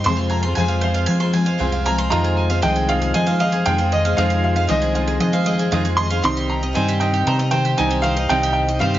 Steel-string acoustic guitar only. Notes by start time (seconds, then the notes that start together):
0.06 F2 C3 F3 G#3 C4 G#4
0.44 F3 G#3 C4 G#4
0.57 F2 C3 F3 G#3 C4 G#4
0.82 F3 G#3 C4 G#4
1.20 F3 G#3 C4 G#4
1.33 F3 G#3 C4 G#4
1.45 F3 G#3 C4 G#4
1.58 F2 C3 F3 G#3 C4 G#4
1.84 F3 G#3 C4 G#4
2.11 F2 C3 D#3 G#3 C4 G#4
2.49 D#3 G#3 C4 G#4
2.62 F2 C3 D#3 G#3 C4 G#4
3.27 D#3 G#3 C4 G#4
3.39 D#3 G#3 C4 G#4
3.52 D#3 G#3 C4 G#4
3.65 F2 C3 D#3 G#3 C4 G#4
3.78 D#3 G#3 C4 G#4
3.92 D#3 G#3 C4 G#4
4.04 D#3 G#3 C4 G#4
4.18 F2 C3 D#3 G#3 C4 G#4
4.55 D#3 G#3 C4 G#4
4.67 F2 C3 D#3 G#3 C4 G#4
5.32 D#3 G#3 C4 G#4
5.44 D#3 G#3 C4 G#4
5.57 D#3 G#3 C4 G#4
5.71 F2 C3 D#3 G#3 C4 G#4
5.84 D#3 G#3 C4 G#4
5.97 D#3 G#3 C4 G#4
6.10 D#3 G#3 C4 G#4
6.22 C3 D#3 C4 D#4 G4
6.61 C4 D#4 G4
6.73 C3 D#3 C4 D#4 G4
7.37 C4 D#4 G4
7.51 D#3 C4 D#4 G4
7.77 C3 D#3 C4 D#4 G4
8.02 D#3 C4 D#4 G4
8.15 C4 D#4 G4
8.28 C3 D#3 C4 D#4 G4
8.66 C4 D#4 G4
8.79 C3 D#3 C4 D#4 G4